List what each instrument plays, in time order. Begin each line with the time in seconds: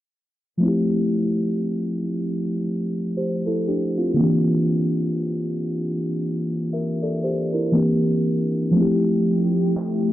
0.57 synth keys F3 A3
0.62 synth keys C4 E4
0.67 synth keys G4
3.17 synth keys G4 C5
3.46 synth keys E4 A4
3.68 synth keys D4 G4
3.97 synth keys C4 F4
4.14 synth keys D3 A#3
4.19 synth keys E3 C4 D4
4.23 synth keys G4
6.73 synth keys A#4 E5
7.02 synth keys A4 D5
7.23 synth keys G4 C5
7.53 synth keys E4 A#4
7.72 synth keys E3 A#3 C4 D4
7.77 synth keys G4
8.71 synth keys F3 A3
8.76 analog synth pad F3 A3 E4 G4, synth keys C4 E4
8.81 synth keys G4
9.77 clap